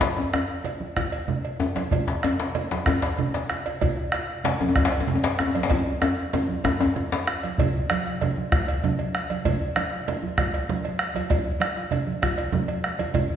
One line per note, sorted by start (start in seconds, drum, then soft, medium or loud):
0.01 bombo low medium
0.01 cowbell medium
0.01 djembe slap loud
0.01 low conga medium
0.01 djembe bass medium
0.17 bombo rim soft
0.17 djembe slap soft
0.17 djembe tone medium
0.33 bombo rim loud
0.33 cowbell soft
0.33 djembe slap medium
0.33 djembe tone medium
0.64 bombo rim soft
0.64 cowbell soft
0.64 low conga medium
0.81 djembe tone medium
0.81 high conga soft
0.96 bombo rim medium
0.96 bombo low medium
0.96 cowbell soft
0.96 djembe slap medium
0.96 djembe bass medium
1.12 bombo rim soft
1.12 cowbell soft
1.28 high conga soft
1.28 low conga medium
1.45 cowbell soft
1.45 djembe slap soft
1.60 djembe slap medium
1.60 djembe tone loud
1.75 cowbell soft
1.75 djembe slap medium
1.75 djembe slap soft
1.75 high conga medium
1.75 djembe tone medium
1.91 bombo rim soft
1.91 bombo low medium
1.91 cowbell medium
1.91 low conga medium
1.91 djembe bass medium
2.07 bombo rim soft
2.07 djembe slap medium
2.07 djembe slap soft
2.23 bombo rim medium
2.23 cowbell soft
2.23 djembe slap medium
2.23 djembe tone loud
2.40 djembe slap medium
2.55 bombo rim soft
2.55 cowbell medium
2.55 low conga medium
2.71 djembe slap medium
2.71 high conga medium
2.71 djembe tone medium
2.86 bombo rim loud
2.86 bombo low medium
2.86 cowbell soft
2.86 djembe slap medium
2.86 djembe tone medium
2.86 djembe bass medium
3.02 bombo rim soft
3.02 cowbell soft
3.02 djembe slap medium
3.18 high conga soft
3.18 low conga medium
3.34 cowbell soft
3.34 djembe slap medium
3.34 djembe slap soft
3.50 bombo rim medium
3.50 djembe slap medium
3.66 cowbell medium
3.66 djembe slap soft
3.66 djembe tone medium
3.81 bombo rim soft
3.81 bombo low medium
3.81 cowbell medium
3.81 low conga medium
3.81 djembe bass medium
3.97 bombo rim soft
3.97 djembe slap soft
4.12 bombo rim loud
4.12 cowbell soft
4.12 djembe slap medium
4.44 bombo rim soft
4.44 cowbell medium
4.44 djembe slap loud
4.44 low conga medium
4.61 djembe tone medium
4.61 high conga medium
4.61 djembe tone medium
4.69 djembe tone medium
4.76 bombo rim medium
4.76 bombo low loud
4.76 cowbell soft
4.76 djembe slap medium
4.76 djembe tone medium
4.76 djembe bass medium
4.85 djembe slap medium
4.92 bombo rim soft
4.92 cowbell soft
5.00 djembe tone medium
5.07 high conga soft
5.07 djembe tone medium
5.07 low conga medium
5.15 djembe tone medium
5.23 cowbell soft
5.23 djembe slap loud
5.23 djembe slap soft
5.39 bombo rim medium
5.39 djembe slap medium
5.39 djembe tone medium
5.47 djembe tone medium
5.55 cowbell medium
5.55 djembe slap soft
5.55 high conga medium
5.55 djembe tone medium
5.63 djembe slap loud
5.70 bombo rim soft
5.70 bombo low medium
5.70 cowbell medium
5.70 djembe tone loud
5.70 low conga medium
5.70 djembe bass medium
6.02 bombo rim loud
6.02 cowbell medium
6.02 djembe slap medium
6.02 djembe tone loud
6.18 djembe slap soft
6.18 high conga soft
6.33 cowbell medium
6.33 djembe tone medium
6.33 low conga medium
6.48 bombo rim soft
6.48 high conga medium
6.48 djembe tone medium
6.64 bombo rim medium
6.64 bombo low loud
6.64 cowbell soft
6.64 djembe slap medium
6.64 djembe tone medium
6.64 djembe bass medium
6.80 cowbell soft
6.80 djembe tone loud
6.96 bombo rim soft
6.96 high conga soft
6.96 low conga medium
7.12 bombo rim soft
7.12 cowbell soft
7.12 djembe slap loud
7.12 high conga soft
7.27 bombo rim loud
7.27 djembe slap medium
7.27 high conga soft
7.43 bombo rim soft
7.43 cowbell soft
7.43 djembe slap soft
7.43 high conga medium
7.43 djembe tone soft
7.58 bombo low loud
7.58 cowbell medium
7.58 high conga soft
7.58 djembe bass medium
7.58 low conga medium
7.76 high conga soft
7.90 bombo rim loud
7.90 cowbell medium
7.90 high conga medium
8.06 bombo rim soft
8.06 djembe slap medium
8.21 cowbell medium
8.21 high conga soft
8.21 low conga medium
8.36 djembe tone medium
8.36 high conga medium
8.52 bombo rim loud
8.52 bombo low loud
8.52 cowbell soft
8.52 high conga soft
8.52 djembe bass medium
8.68 bombo rim soft
8.68 cowbell soft
8.68 djembe slap medium
8.84 high conga medium
8.84 low conga medium
8.99 bombo rim soft
8.99 cowbell soft
8.99 high conga soft
9.15 bombo rim loud
9.30 cowbell soft
9.30 djembe slap medium
9.30 high conga medium
9.45 bombo low loud
9.45 cowbell medium
9.45 high conga soft
9.45 low conga medium
9.45 djembe bass medium
9.61 high conga soft
9.76 bombo rim loud
9.76 cowbell medium
9.76 high conga medium
9.91 bombo rim soft
9.91 djembe slap medium
10.08 cowbell medium
10.08 high conga soft
10.08 low conga medium
10.23 high conga medium
10.23 djembe tone medium
10.38 bombo rim loud
10.38 bombo low loud
10.38 cowbell medium
10.38 high conga soft
10.38 djembe bass medium
10.54 bombo rim soft
10.54 cowbell soft
10.54 djembe slap medium
10.69 high conga medium
10.69 low conga medium
10.84 bombo rim soft
10.84 cowbell soft
10.84 high conga soft
10.99 bombo rim loud
11.15 cowbell medium
11.15 djembe slap medium
11.15 high conga medium
11.15 djembe tone medium
11.30 bombo low loud
11.30 cowbell medium
11.30 high conga soft
11.30 low conga medium
11.30 djembe bass medium
11.45 high conga soft
11.60 bombo rim loud
11.60 cowbell medium
11.60 high conga medium
11.77 bombo rim soft
11.77 djembe slap medium
11.91 cowbell medium
11.91 high conga soft
11.91 low conga medium
12.07 high conga medium
12.22 bombo rim loud
12.22 bombo low loud
12.22 cowbell medium
12.22 high conga soft
12.22 djembe bass medium
12.38 bombo rim soft
12.38 cowbell soft
12.38 djembe slap medium
12.52 high conga medium
12.52 low conga medium
12.68 bombo rim soft
12.68 cowbell soft
12.68 high conga soft
12.84 bombo rim medium
12.99 cowbell medium
12.99 djembe slap medium
12.99 high conga medium
12.99 djembe tone medium
13.14 bombo rim soft
13.14 bombo low medium
13.14 cowbell medium
13.14 low conga medium
13.14 djembe bass medium
13.30 high conga soft